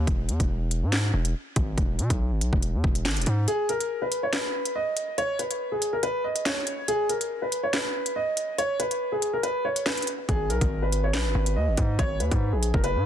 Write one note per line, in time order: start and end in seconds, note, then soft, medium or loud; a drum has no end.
0.07 0.30 E1 loud
0.07 kick loud
0.07 closed hi-hat medium
0.29 0.39 E2 loud
0.29 closed hi-hat medium
0.40 0.84 E1 loud
0.40 kick loud
0.40 closed hi-hat medium
0.71 closed hi-hat medium
0.82 1.12 G#2 loud
0.92 snare loud
0.92 clap loud
0.92 closed hi-hat medium
1.14 1.34 E1 loud
1.25 closed hi-hat medium
1.56 1.77 G#1 loud
1.56 kick loud
1.56 closed hi-hat loud
1.78 2.00 E1 loud
1.78 kick loud
1.78 closed hi-hat medium
1.99 2.10 B2 loud
1.99 closed hi-hat medium
2.10 2.33 B1 loud
2.10 kick loud
2.10 closed hi-hat medium
2.32 2.43 G#1 loud
2.41 2.52 B1 loud
2.41 closed hi-hat medium
2.53 2.75 E1 loud
2.53 kick medium
2.62 closed hi-hat medium
2.74 2.83 E2 loud
2.84 3.07 E1 loud
2.84 kick loud
2.95 closed hi-hat medium
3.05 3.18 G#1 medium
3.05 snare loud
3.05 clap loud
3.05 closed hi-hat soft
3.11 closed hi-hat medium
3.17 3.26 E1 loud
3.17 closed hi-hat medium
3.22 closed hi-hat medium
3.26 3.47 G#2 loud
3.26 closed hi-hat loud
3.48 3.67 G#4 loud
3.48 closed hi-hat medium
3.69 4.00 A#4 medium
3.69 closed hi-hat medium
3.81 closed hi-hat medium
4.02 4.21 B4 medium
4.12 closed hi-hat medium
4.23 4.32 C#5 medium
4.33 4.73 B4 medium
4.33 snare loud
4.33 clap loud
4.33 closed hi-hat medium
4.65 closed hi-hat medium
4.75 5.15 D#5 medium
4.97 closed hi-hat loud
5.18 5.37 C#5 loud
5.18 closed hi-hat medium
5.39 5.70 B4 medium
5.39 closed hi-hat medium
5.51 closed hi-hat medium
5.72 5.91 G#4 medium
5.82 closed hi-hat medium
5.93 6.02 A#4 medium
6.03 6.22 B4 loud
6.03 closed hi-hat medium
6.24 6.44 D#5 medium
6.36 closed hi-hat medium
6.46 6.86 C#5 medium
6.46 snare loud
6.46 clap loud
6.46 closed hi-hat medium
6.67 closed hi-hat loud
6.88 7.08 G#4 loud
6.88 closed hi-hat medium
7.09 7.40 A#4 medium
7.09 closed hi-hat medium
7.21 closed hi-hat medium
7.42 7.61 B4 medium
7.52 closed hi-hat medium
7.63 7.72 C#5 medium
7.73 8.13 B4 medium
7.73 snare loud
7.73 clap loud
7.73 closed hi-hat medium
8.06 closed hi-hat medium
8.16 8.56 D#5 medium
8.37 closed hi-hat loud
8.58 8.78 C#5 loud
8.58 closed hi-hat medium
8.80 9.10 B4 medium
8.80 closed hi-hat medium
8.91 closed hi-hat medium
9.12 9.32 G#4 medium
9.22 closed hi-hat medium
9.33 9.43 A#4 medium
9.43 9.63 B4 loud
9.43 closed hi-hat medium
9.65 9.84 C#5 medium
9.76 closed hi-hat medium
9.86 10.05 B4 medium
9.86 snare loud
9.86 clap loud
9.86 closed hi-hat medium
9.92 closed hi-hat medium
9.97 closed hi-hat medium
10.02 closed hi-hat medium
10.07 closed hi-hat loud
10.29 10.51 G#1 loud
10.29 10.48 G#4 loud
10.29 kick loud
10.29 closed hi-hat medium
10.50 10.61 B1 loud
10.50 10.80 A#4 medium
10.50 closed hi-hat medium
10.61 11.15 G#1 loud
10.61 kick medium
10.61 closed hi-hat medium
10.82 11.02 B4 medium
10.92 closed hi-hat medium
11.04 11.13 C#5 medium
11.14 11.27 A#1 loud
11.14 11.54 B4 medium
11.14 snare loud
11.14 clap loud
11.14 closed hi-hat medium
11.25 11.35 G#1 loud
11.35 11.58 G#1 loud
11.46 closed hi-hat medium
11.56 11.69 D#2 medium
11.56 11.96 D#5 medium
11.68 11.77 G#1 medium
11.77 11.98 G#2 loud
11.77 kick loud
11.77 closed hi-hat loud
11.99 12.22 G#1 loud
11.99 12.18 C#5 loud
11.99 kick loud
11.99 closed hi-hat medium
12.20 12.31 D#2 loud
12.20 12.51 B4 medium
12.20 closed hi-hat medium
12.31 12.54 G#2 loud
12.31 kick loud
12.31 closed hi-hat medium
12.53 12.73 A#1 loud
12.53 12.72 G#4 medium
12.63 closed hi-hat medium
12.74 12.97 F#1 loud
12.74 12.83 A#4 medium
12.74 kick medium
12.84 13.03 B4 loud
12.84 closed hi-hat medium
12.95 13.05 G#2 loud